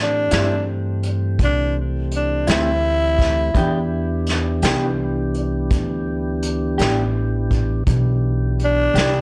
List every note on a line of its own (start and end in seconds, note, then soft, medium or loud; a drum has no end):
0.00 0.28 A2 medium
0.00 3.51 E3 medium
0.00 3.51 A3 medium
0.00 3.51 C4 medium
0.00 0.69 D4 medium
0.00 3.51 G4 medium
0.31 1.37 G2 medium
0.31 0.54 A2 soft
0.31 0.54 G3 medium
0.31 0.53 C4 medium
0.31 0.53 E4 medium
0.31 snare medium
0.31 closed hi-hat medium
1.03 closed hi-hat medium
1.39 2.44 C2 medium
1.39 kick medium
1.39 closed hi-hat medium
1.44 1.77 D4 medium
2.11 closed hi-hat medium
2.16 2.49 D4 medium
2.47 3.53 D2 medium
2.47 2.70 A2 medium
2.47 2.70 G3 medium
2.47 2.69 C4 medium
2.47 2.69 E4 medium
2.47 snare medium
2.47 closed hi-hat medium
2.52 3.90 E4 medium
3.19 kick medium
3.19 snare soft
3.19 closed hi-hat soft
3.54 4.60 E2 medium
3.54 3.76 E3 medium
3.54 7.83 E3 medium
3.54 7.83 B3 medium
3.54 3.77 B3 medium
3.54 7.84 D4 medium
3.54 3.78 D4 medium
3.54 7.83 G4 medium
3.54 3.78 G4 medium
3.54 kick medium
3.54 closed hi-hat medium
4.27 snare soft
4.27 closed hi-hat medium
4.62 5.68 C2 medium
4.62 4.86 E3 medium
4.62 4.86 B3 medium
4.62 4.85 D4 medium
4.62 4.85 G4 medium
4.62 snare loud
4.62 closed hi-hat medium
5.35 closed hi-hat medium
5.71 6.76 D2 medium
5.71 kick medium
5.71 closed hi-hat medium
6.43 closed hi-hat medium
6.78 7.84 A1 medium
6.78 7.02 E3 medium
6.78 7.01 B3 medium
6.78 7.01 D4 medium
6.78 7.00 G4 medium
6.78 snare medium
6.78 closed hi-hat medium
7.51 kick medium
7.51 closed hi-hat medium
7.87 8.92 B1 medium
7.87 9.21 E3 medium
7.87 9.21 B3 medium
7.87 9.21 D4 medium
7.87 9.21 G4 medium
7.87 kick medium
7.87 closed hi-hat medium
8.59 closed hi-hat soft
8.64 9.21 D4 medium
8.94 9.21 C2 medium
8.94 9.17 B3 soft
8.94 9.17 D4 medium
8.94 9.17 G4 medium
8.94 snare medium
8.94 closed hi-hat medium
8.98 9.18 E3 soft